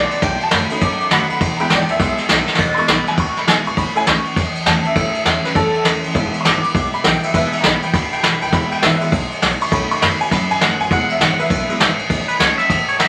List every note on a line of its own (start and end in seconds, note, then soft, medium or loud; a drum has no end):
0.00 0.20 B2 medium
0.00 0.10 E3 medium
0.00 0.10 G#3 medium
0.00 0.11 B3 loud
0.00 0.22 D5 loud
0.10 0.22 B3 soft
0.10 0.21 E4 medium
0.10 muted upright bass stroke medium
0.10 ride medium
0.22 0.35 B1 loud
0.22 0.79 B2 medium
0.22 0.41 G5 loud
0.22 kick loud
0.22 snare soft
0.22 ride medium
0.40 0.53 A5 loud
0.40 ride medium
0.51 0.65 F#2 loud
0.51 0.69 D#3 medium
0.51 0.70 A3 loud
0.51 0.70 B3 medium
0.51 0.69 F#4 loud
0.51 0.82 B5 medium
0.51 snare loud
0.51 ride medium
0.70 1.37 A3 medium
0.70 0.82 B3 soft
0.70 1.38 C#4 soft
0.70 1.38 D#4 medium
0.70 0.81 F#4 medium
0.70 ride medium
0.81 1.39 F#2 loud
0.81 0.95 A2 medium
0.81 1.11 D6 loud
0.81 kick loud
0.81 ride medium
1.00 muted upright bass stroke medium
1.00 ride medium
1.10 1.24 F#2 loud
1.10 1.28 D#3 medium
1.10 1.29 A3 medium
1.10 1.29 B3 loud
1.10 1.28 F#4 loud
1.10 1.39 F#5 medium
1.10 1.41 B5 loud
1.10 snare loud
1.10 ride medium
1.30 1.38 F#2 loud
1.30 1.41 B3 medium
1.30 ride medium
1.40 1.54 E1 medium
1.40 1.98 E2 medium
1.40 kick loud
1.40 ride medium
1.57 1.77 G#3 medium
1.57 1.77 B3 medium
1.57 1.77 E4 medium
1.57 1.70 G5 loud
1.57 1.58 A#5 medium
1.57 muted upright bass stroke medium
1.57 ride medium
1.61 1.71 B5 loud
1.70 1.84 G#1 medium
1.70 1.88 E3 loud
1.70 1.88 G#3 medium
1.70 1.89 B3 loud
1.70 1.87 E4 medium
1.70 1.89 D5 medium
1.70 1.89 G5 medium
1.70 snare loud
1.70 ride medium
1.88 2.00 B3 soft
1.88 1.99 E4 medium
1.88 2.47 E5 loud
1.88 muted upright bass stroke medium
1.88 snare soft
1.88 ride medium
1.99 2.13 B1 medium
1.99 2.57 B2 medium
1.99 2.17 G#3 medium
1.99 2.17 B3 soft
1.99 2.17 E4 medium
1.99 kick loud
1.99 snare soft
1.99 ride loud
2.18 muted upright bass stroke medium
2.18 snare soft
2.18 ride medium
2.29 2.43 B1 loud
2.29 2.47 E3 medium
2.29 2.48 G#3 loud
2.29 2.48 B3 loud
2.29 2.47 E4 loud
2.29 snare loud
2.29 ride loud
2.47 2.60 B3 medium
2.47 2.59 E4 medium
2.47 muted upright bass stroke medium
2.47 snare medium
2.55 2.72 E1 medium
2.55 kick loud
2.55 snare loud
2.55 crash loud
2.60 3.17 E2 medium
2.74 3.46 G#3 medium
2.74 3.46 B3 medium
2.74 2.76 C6 medium
2.74 muted upright bass stroke medium
2.74 ride medium
2.78 3.46 E4 medium
2.78 2.89 C#6 loud
2.88 3.01 B1 medium
2.88 3.06 E3 medium
2.88 3.07 G#3 medium
2.88 3.07 B3 medium
2.88 3.06 E4 loud
2.88 3.07 B5 loud
2.88 snare loud
2.88 ride medium
3.07 3.19 B3 soft
3.07 3.18 E4 medium
3.07 3.19 G#5 loud
3.07 muted upright bass stroke medium
3.07 snare soft
3.07 ride medium
3.17 3.31 D2 medium
3.17 3.75 B2 medium
3.17 3.37 C#6 medium
3.17 kick loud
3.17 ride medium
3.36 3.49 B5 medium
3.36 muted upright bass stroke medium
3.36 snare soft
3.36 ride medium
3.47 3.61 B1 loud
3.47 3.65 E3 medium
3.47 3.64 G#3 soft
3.47 3.66 G#3 medium
3.47 3.65 B3 soft
3.47 3.66 B3 medium
3.47 3.65 E4 medium
3.47 3.64 E4 loud
3.47 3.67 G#5 loud
3.47 snare loud
3.47 ride medium
3.65 3.74 G#1 loud
3.65 3.78 B3 medium
3.65 3.77 E4 medium
3.65 3.78 C#6 medium
3.65 ride medium
3.77 3.90 A1 medium
3.77 4.35 A2 medium
3.77 3.96 B5 loud
3.77 kick loud
3.77 ride medium
3.95 4.13 A3 medium
3.95 4.13 C#4 medium
3.95 4.14 E4 medium
3.95 4.07 G#5 loud
3.95 muted upright bass stroke medium
3.95 ride medium
4.06 4.20 C#2 loud
4.06 4.25 E3 medium
4.06 4.25 A3 loud
4.06 4.25 C#4 loud
4.06 4.24 E4 loud
4.06 4.37 C#6 medium
4.06 snare loud
4.06 ride medium
4.25 4.37 C#4 medium
4.25 4.36 E4 medium
4.25 muted upright bass stroke medium
4.25 ride medium
4.36 4.94 E2 medium
4.36 4.50 E2 medium
4.36 kick loud
4.36 snare soft
4.36 ride medium
4.55 muted upright bass stroke medium
4.55 ride medium
4.66 4.79 E2 loud
4.66 4.84 E3 loud
4.66 4.84 A3 medium
4.66 4.84 C#4 medium
4.66 4.83 E4 medium
4.66 4.85 A5 loud
4.66 snare loud
4.66 ride medium
4.84 4.96 C#4 medium
4.84 4.95 E4 medium
4.84 5.14 E5 loud
4.84 ride medium
4.95 5.09 A1 loud
4.95 5.53 A2 medium
4.95 5.42 A3 medium
4.95 5.42 C#4 medium
4.95 5.42 E4 medium
4.95 kick loud
4.95 ride medium
5.14 5.44 E5 medium
5.14 muted upright bass stroke medium
5.14 ride medium
5.24 5.38 E2 medium
5.24 5.43 E3 medium
5.24 5.44 A3 medium
5.24 5.44 C#4 medium
5.24 5.42 E4 loud
5.24 snare loud
5.24 ride medium
5.43 5.56 C#4 soft
5.43 5.55 E4 medium
5.43 5.56 B4 medium
5.43 muted upright bass stroke medium
5.43 snare soft
5.43 ride medium
5.54 6.13 E2 loud
5.54 5.69 F#2 medium
5.54 5.72 A3 soft
5.54 5.72 C#4 soft
5.54 5.72 E4 medium
5.54 5.85 A4 loud
5.54 kick loud
5.54 ride medium
5.74 muted upright bass stroke medium
5.74 ride medium
5.83 5.98 E2 loud
5.83 6.02 E3 medium
5.83 6.03 A3 loud
5.83 6.03 C#4 medium
5.83 6.01 E4 loud
5.83 snare loud
5.83 ride medium
6.02 6.12 E2 loud
6.02 6.15 C#4 medium
6.02 6.14 E4 medium
6.02 ride medium
6.14 6.28 E1 loud
6.14 6.72 E2 medium
6.14 6.60 G#3 medium
6.14 6.61 B3 medium
6.14 6.61 E4 medium
6.14 kick loud
6.14 ride medium
6.34 muted upright bass stroke medium
6.34 ride medium
6.41 6.62 E3 medium
6.41 6.62 G#3 loud
6.41 6.63 B3 medium
6.41 6.43 C#6 medium
6.45 6.58 G#1 loud
6.45 6.61 E4 loud
6.45 6.92 D6 loud
6.45 snare loud
6.45 ride medium
6.62 6.74 B3 soft
6.62 6.73 E4 medium
6.62 muted upright bass stroke medium
6.62 ride medium
6.74 6.88 B1 medium
6.74 7.32 B2 medium
6.74 6.91 G#3 medium
6.74 6.91 B3 soft
6.74 6.91 E4 medium
6.74 kick loud
6.74 ride loud
6.93 7.04 B5 loud
6.93 muted upright bass stroke medium
6.93 ride medium
7.04 7.17 B1 loud
7.04 7.22 E3 medium
7.04 7.22 G#3 medium
7.04 7.23 B3 loud
7.04 7.21 E4 medium
7.04 7.23 G5 medium
7.04 snare loud
7.04 ride medium
7.22 7.34 B3 medium
7.22 7.33 E4 medium
7.22 7.34 E5 medium
7.22 ride medium
7.33 7.47 E1 loud
7.33 7.91 E2 medium
7.33 7.80 G#3 medium
7.33 7.80 B3 soft
7.33 7.80 E4 medium
7.33 7.52 B4 loud
7.33 7.53 E5 loud
7.33 kick loud
7.33 ride loud
7.53 muted upright bass stroke medium
7.53 ride medium
7.61 7.77 B1 loud
7.61 7.81 E3 medium
7.61 7.81 G#3 loud
7.61 7.82 B3 medium
7.61 7.80 E4 medium
7.61 7.63 A#5 medium
7.61 snare loud
7.61 ride medium
7.66 7.83 B5 loud
7.82 7.93 B3 soft
7.82 7.93 E4 medium
7.82 7.94 G5 medium
7.82 muted upright bass stroke medium
7.82 ride medium
7.93 8.06 D2 medium
7.93 8.51 B2 medium
7.93 8.12 B5 medium
7.93 kick loud
7.93 snare soft
7.93 ride loud
8.12 8.23 G5 medium
8.12 muted upright bass stroke medium
8.12 ride medium
8.22 8.36 B1 loud
8.22 8.40 E3 medium
8.22 8.41 G#3 medium
8.22 8.41 B3 loud
8.22 8.39 E4 loud
8.22 8.41 B5 loud
8.22 snare loud
8.22 ride medium
8.41 8.50 B1 loud
8.41 8.53 B3 medium
8.41 8.52 E4 medium
8.41 8.53 G5 medium
8.41 ride medium
8.51 8.66 E1 medium
8.51 9.09 E2 medium
8.51 8.99 G#3 medium
8.51 8.99 B3 medium
8.51 9.00 E4 medium
8.51 8.71 B5 loud
8.51 kick loud
8.51 snare soft
8.51 ride medium
8.71 8.82 G5 loud
8.71 muted upright bass stroke medium
8.71 ride medium
8.82 8.96 G#1 loud
8.82 9.11 E3 loud
8.82 9.11 G#3 medium
8.82 9.11 B3 medium
8.82 9.12 E4 loud
8.82 9.10 B4 medium
8.82 9.12 E5 loud
8.82 snare loud
8.82 ride medium
9.01 9.11 G#3 medium
9.01 9.11 B3 soft
9.01 9.11 E4 medium
9.01 ride medium
9.12 9.25 B1 medium
9.12 9.41 G#2 medium
9.12 kick loud
9.12 ride loud
9.30 muted upright bass stroke medium
9.30 ride medium
9.42 9.55 B1 loud
9.42 9.71 A2 medium
9.42 snare loud
9.42 ride loud
9.61 9.72 C#6 loud
9.61 ride medium
9.71 9.85 B1 medium
9.71 10.17 A3 medium
9.71 10.18 C#4 medium
9.71 10.18 D#4 medium
9.71 9.91 B5 loud
9.71 kick loud
9.71 ride loud
9.91 10.02 C#6 loud
9.91 muted upright bass stroke medium
9.91 ride medium
10.00 10.15 F#2 loud
10.00 10.19 D#3 medium
10.00 10.20 A3 medium
10.00 10.20 B3 loud
10.00 10.19 F#4 loud
10.00 10.20 B5 loud
10.00 snare loud
10.00 ride medium
10.20 10.32 B3 soft
10.20 10.31 F#4 medium
10.20 10.31 G#5 medium
10.20 muted upright bass stroke medium
10.20 ride medium
10.31 10.89 F#2 loud
10.31 10.44 A2 medium
10.31 10.50 B5 loud
10.31 kick loud
10.31 snare soft
10.31 ride loud
10.50 10.61 G#5 loud
10.50 muted upright bass stroke medium
10.50 ride medium
10.60 10.74 F#2 loud
10.60 10.79 D#3 medium
10.60 10.79 A3 loud
10.60 10.79 B3 loud
10.60 10.78 F#4 medium
10.60 10.80 F#5 loud
10.60 snare loud
10.60 ride medium
10.79 10.87 F#2 loud
10.79 10.91 B3 medium
10.79 10.90 F#4 medium
10.79 10.91 G#5 medium
10.79 ride medium
10.91 11.04 E1 loud
10.91 11.48 E2 medium
10.91 11.37 G#3 medium
10.91 11.37 B3 medium
10.91 11.37 E4 medium
10.91 11.10 F#5 loud
10.91 kick loud
10.91 ride medium
11.10 11.21 E5 medium
11.10 muted upright bass stroke medium
11.10 ride medium
11.19 11.33 G#1 loud
11.19 11.38 E3 loud
11.19 11.39 G#3 loud
11.19 11.39 B3 loud
11.19 11.37 E4 loud
11.19 11.40 F#5 medium
11.19 snare loud
11.19 ride loud
11.38 11.50 B3 soft
11.38 11.50 E4 medium
11.38 11.95 B4 medium
11.38 11.98 E5 loud
11.38 muted upright bass stroke medium
11.38 ride medium
11.50 11.63 B1 medium
11.50 11.79 F#2 medium
11.50 kick loud
11.50 ride medium
11.69 11.79 G#3 medium
11.69 11.79 B3 soft
11.69 11.79 E4 medium
11.69 muted upright bass stroke medium
11.69 ride medium
11.80 11.94 G#1 loud
11.80 12.09 G#2 medium
11.80 snare loud
11.80 ride medium
11.99 muted upright bass stroke medium
11.99 ride medium
12.10 12.26 A1 loud
12.10 12.68 A2 medium
12.10 kick loud
12.10 ride loud
12.28 12.39 B4 medium
12.28 muted upright bass stroke medium
12.28 ride medium
12.39 12.56 C#2 medium
12.39 12.57 E3 medium
12.39 12.58 A3 medium
12.39 12.58 C#4 loud
12.39 12.57 E4 loud
12.39 12.58 C#5 medium
12.39 snare loud
12.39 ride loud
12.58 12.70 C#4 soft
12.58 12.69 E4 medium
12.58 12.87 E5 loud
12.58 muted upright bass stroke medium
12.58 snare soft
12.58 ride medium
12.70 12.86 A1 medium
12.70 12.98 G#2 medium
12.70 kick loud
12.70 snare soft
12.70 ride loud
12.88 12.99 C#5 medium
12.88 muted upright bass stroke medium
12.88 ride medium
12.99 13.08 C#2 loud
12.99 13.08 F#2 medium
12.99 13.08 E5 medium
12.99 snare loud
12.99 ride medium